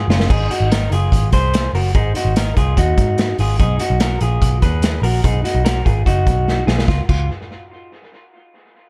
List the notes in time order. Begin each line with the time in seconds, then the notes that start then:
0.08 F#1 C#4 F4, snare
0.20 snare
0.30 G#1 D#4 G#4, kick, crash
0.51 D#4 F#4, closed hi-hat
0.60 G#1
0.72 D#4 A#4, snare, closed hi-hat
0.91 F#1 F4 G#4, closed hi-hat
1.12 G#1, kick, closed hi-hat
1.32 C2 G#4 C5, kick, closed hi-hat
1.54 snare, closed hi-hat
1.73 F#1 F#4 A#4, open hi-hat
1.95 G#1 D#4 G#4, kick, closed hi-hat
2.15 D#4 F#4, closed hi-hat
2.25 G#1
2.36 D#4 A#4, snare, closed hi-hat
2.56 C2 F4 G#4, kick, closed hi-hat
2.77 D#2 D#4 F#4, kick, closed hi-hat
2.97 G#2, kick, closed hi-hat
3.18 snare, closed hi-hat
3.38 G#1 F4 G#4, open hi-hat
3.59 B1 D#4 G#4, kick, closed hi-hat
3.79 D#4 F#4, closed hi-hat
3.90 B1
4.00 F#4 A#4, snare, closed hi-hat
4.21 A#1 F4 G#4, closed hi-hat
4.41 B1, kick, closed hi-hat
4.62 D#2 G#4 B4, kick, closed hi-hat
4.82 snare, closed hi-hat
5.02 A#1 F#4 A#4, open hi-hat
5.24 B1 D#4 G#4, kick, closed hi-hat
5.44 D#4 F#4, closed hi-hat
5.55 B1
5.65 F#4 A#4, snare, closed hi-hat
5.85 G#1 F4 G#4, kick, closed hi-hat
6.06 F#1 D#4 F#4, kick, closed hi-hat
6.27 B1, kick, closed hi-hat
6.48 snare
6.67 B1 F4 G#4, snare
6.79 snare
6.88 C#2 F4, kick, snare
7.09 C#2 F4, kick, crash